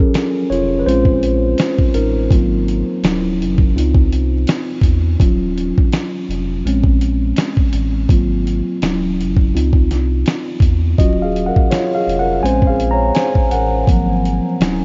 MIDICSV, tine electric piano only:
0, 0, Header, 1, 2, 480
1, 0, Start_track
1, 0, Key_signature, -5, "minor"
1, 0, Tempo, 722892
1, 1532, Time_signature, 4, 2, 24, 8
1, 9859, End_track
2, 0, Start_track
2, 0, Title_t, "Tine electric piano"
2, 0, Program_c, 0, 4
2, 0, Control_c, 0, 64, 127
2, 0, Note_on_c, 0, 54, 57
2, 0, Note_on_c, 0, 61, 73
2, 0, Note_on_c, 0, 65, 63
2, 0, Note_on_c, 0, 68, 91
2, 0, Note_on_c, 0, 69, 69
2, 0, Note_on_c, 0, 70, 97
2, 307, Note_off_c, 0, 54, 0
2, 311, Note_off_c, 0, 61, 0
2, 312, Note_off_c, 0, 65, 0
2, 332, Note_on_c, 0, 73, 92
2, 346, Note_off_c, 0, 70, 0
2, 347, Note_on_c, 0, 65, 78
2, 524, Note_off_c, 0, 65, 0
2, 527, Note_on_c, 0, 71, 82
2, 536, Note_off_c, 0, 73, 0
2, 570, Note_off_c, 0, 71, 0
2, 574, Note_on_c, 0, 72, 109
2, 578, Note_on_c, 0, 56, 59
2, 580, Control_c, 0, 64, 0
2, 582, Note_off_c, 0, 69, 0
2, 582, Note_on_c, 0, 60, 52
2, 587, Note_off_c, 0, 68, 0
2, 587, Note_on_c, 0, 61, 68
2, 588, Note_on_c, 0, 65, 81
2, 679, Control_c, 0, 64, 127
2, 1269, Note_off_c, 0, 56, 0
2, 1270, Note_off_c, 0, 60, 0
2, 1273, Note_off_c, 0, 61, 0
2, 1273, Note_off_c, 0, 65, 0
2, 1292, Note_on_c, 0, 70, 81
2, 1307, Note_on_c, 0, 63, 62
2, 1314, Note_off_c, 0, 72, 0
2, 1537, Note_on_c, 0, 54, 59
2, 1540, Control_c, 0, 64, 0
2, 1540, Note_on_c, 0, 58, 52
2, 1542, Note_on_c, 0, 60, 52
2, 1545, Note_on_c, 0, 65, 61
2, 1643, Control_c, 0, 64, 127
2, 1985, Note_off_c, 0, 70, 0
2, 1991, Note_off_c, 0, 54, 0
2, 1992, Note_off_c, 0, 58, 0
2, 1993, Note_off_c, 0, 60, 0
2, 1993, Note_off_c, 0, 63, 0
2, 1995, Note_off_c, 0, 65, 0
2, 2018, Note_on_c, 0, 54, 56
2, 2020, Control_c, 0, 64, 0
2, 2023, Note_on_c, 0, 61, 50
2, 2026, Note_on_c, 0, 64, 64
2, 2133, Control_c, 0, 64, 127
2, 2471, Note_off_c, 0, 54, 0
2, 2474, Note_off_c, 0, 61, 0
2, 2475, Note_off_c, 0, 64, 0
2, 2497, Note_on_c, 0, 65, 60
2, 2500, Control_c, 0, 64, 0
2, 2501, Note_on_c, 0, 60, 57
2, 2506, Note_on_c, 0, 63, 61
2, 2603, Control_c, 0, 64, 127
2, 3428, Note_off_c, 0, 65, 0
2, 3430, Note_off_c, 0, 60, 0
2, 3432, Note_off_c, 0, 63, 0
2, 3457, Note_on_c, 0, 54, 60
2, 3461, Control_c, 0, 64, 0
2, 3462, Note_on_c, 0, 61, 55
2, 3465, Note_on_c, 0, 65, 59
2, 3596, Control_c, 0, 64, 127
2, 3783, Note_off_c, 0, 54, 0
2, 3786, Note_off_c, 0, 61, 0
2, 3787, Note_off_c, 0, 65, 0
2, 4418, Note_on_c, 0, 56, 60
2, 4419, Control_c, 0, 64, 0
2, 4423, Note_on_c, 0, 60, 54
2, 4427, Note_on_c, 0, 61, 64
2, 4543, Control_c, 0, 64, 127
2, 5348, Note_off_c, 0, 56, 0
2, 5351, Note_off_c, 0, 60, 0
2, 5353, Note_off_c, 0, 61, 0
2, 5378, Note_on_c, 0, 54, 56
2, 5380, Control_c, 0, 64, 0
2, 5382, Note_on_c, 0, 58, 52
2, 5383, Note_on_c, 0, 60, 52
2, 5386, Note_on_c, 0, 65, 62
2, 5511, Control_c, 0, 64, 127
2, 5704, Note_off_c, 0, 54, 0
2, 5706, Note_off_c, 0, 58, 0
2, 5707, Note_off_c, 0, 60, 0
2, 5708, Note_off_c, 0, 65, 0
2, 5861, Control_c, 0, 64, 0
2, 5861, Note_on_c, 0, 54, 55
2, 5864, Note_on_c, 0, 61, 50
2, 5868, Note_on_c, 0, 64, 61
2, 5969, Control_c, 0, 64, 127
2, 6313, Note_off_c, 0, 54, 0
2, 6314, Note_off_c, 0, 61, 0
2, 6317, Note_off_c, 0, 64, 0
2, 6340, Control_c, 0, 64, 0
2, 6340, Note_on_c, 0, 65, 58
2, 6345, Note_on_c, 0, 60, 51
2, 6348, Note_on_c, 0, 63, 61
2, 6454, Control_c, 0, 64, 127
2, 7269, Note_off_c, 0, 65, 0
2, 7272, Note_off_c, 0, 60, 0
2, 7273, Note_off_c, 0, 63, 0
2, 7293, Note_on_c, 0, 75, 92
2, 7297, Note_on_c, 0, 54, 55
2, 7301, Control_c, 0, 64, 0
2, 7302, Note_on_c, 0, 61, 55
2, 7306, Note_on_c, 0, 65, 60
2, 7308, Note_on_c, 0, 66, 72
2, 7418, Control_c, 0, 64, 127
2, 7449, Note_off_c, 0, 66, 0
2, 7451, Note_on_c, 0, 77, 80
2, 7457, Note_off_c, 0, 75, 0
2, 7467, Note_on_c, 0, 68, 64
2, 7609, Note_off_c, 0, 68, 0
2, 7612, Note_on_c, 0, 78, 79
2, 7616, Note_off_c, 0, 77, 0
2, 7628, Note_on_c, 0, 70, 63
2, 7684, Note_off_c, 0, 78, 0
2, 7697, Note_off_c, 0, 70, 0
2, 7773, Note_on_c, 0, 73, 88
2, 7779, Note_off_c, 0, 65, 0
2, 7787, Note_on_c, 0, 65, 71
2, 7929, Note_off_c, 0, 65, 0
2, 7933, Note_on_c, 0, 77, 89
2, 7937, Note_off_c, 0, 73, 0
2, 7947, Note_on_c, 0, 68, 67
2, 7988, Note_off_c, 0, 54, 0
2, 7990, Note_off_c, 0, 61, 0
2, 8089, Note_off_c, 0, 68, 0
2, 8094, Note_on_c, 0, 78, 95
2, 8097, Note_off_c, 0, 77, 0
2, 8109, Note_on_c, 0, 70, 72
2, 8242, Note_off_c, 0, 78, 0
2, 8250, Note_off_c, 0, 70, 0
2, 8252, Note_on_c, 0, 80, 104
2, 8257, Note_on_c, 0, 56, 59
2, 8261, Note_on_c, 0, 60, 53
2, 8262, Control_c, 0, 64, 0
2, 8267, Note_on_c, 0, 61, 68
2, 8267, Note_on_c, 0, 72, 86
2, 8373, Control_c, 0, 64, 127
2, 8401, Note_off_c, 0, 80, 0
2, 8409, Note_off_c, 0, 72, 0
2, 8414, Note_on_c, 0, 77, 84
2, 8429, Note_on_c, 0, 68, 65
2, 8570, Note_off_c, 0, 68, 0
2, 8572, Note_on_c, 0, 82, 100
2, 8578, Note_off_c, 0, 77, 0
2, 8587, Note_on_c, 0, 73, 77
2, 8721, Note_off_c, 0, 82, 0
2, 8729, Note_off_c, 0, 73, 0
2, 8732, Note_on_c, 0, 80, 110
2, 8746, Note_on_c, 0, 72, 80
2, 8948, Note_off_c, 0, 56, 0
2, 8950, Note_off_c, 0, 60, 0
2, 8953, Note_off_c, 0, 61, 0
2, 8955, Note_off_c, 0, 80, 0
2, 8963, Note_off_c, 0, 72, 0
2, 8975, Note_on_c, 0, 78, 88
2, 8988, Note_on_c, 0, 70, 69
2, 9216, Note_on_c, 0, 54, 52
2, 9220, Note_on_c, 0, 58, 53
2, 9222, Control_c, 0, 64, 0
2, 9222, Note_on_c, 0, 60, 53
2, 9224, Note_on_c, 0, 53, 61
2, 9353, Control_c, 0, 64, 127
2, 9543, Note_off_c, 0, 54, 0
2, 9545, Note_off_c, 0, 58, 0
2, 9546, Note_off_c, 0, 60, 0
2, 9547, Note_off_c, 0, 53, 0
2, 9699, Control_c, 0, 64, 0
2, 9699, Note_on_c, 0, 54, 57
2, 9704, Note_on_c, 0, 61, 50
2, 9707, Note_on_c, 0, 64, 62
2, 9816, Control_c, 0, 64, 127
2, 9859, Note_off_c, 0, 54, 0
2, 9859, Note_off_c, 0, 61, 0
2, 9859, Note_off_c, 0, 64, 0
2, 9859, Note_off_c, 0, 70, 0
2, 9859, Note_off_c, 0, 78, 0
2, 9859, End_track
0, 0, End_of_file